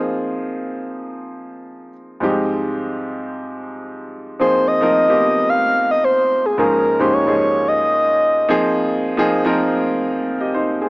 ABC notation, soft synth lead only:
X:1
M:4/4
L:1/16
Q:1/4=110
K:Ab
V:1 name="Soft synth lead"
z16 | z16 | c2 e6 f3 e c3 A | B3 c d4 e6 z2 |
z16 |]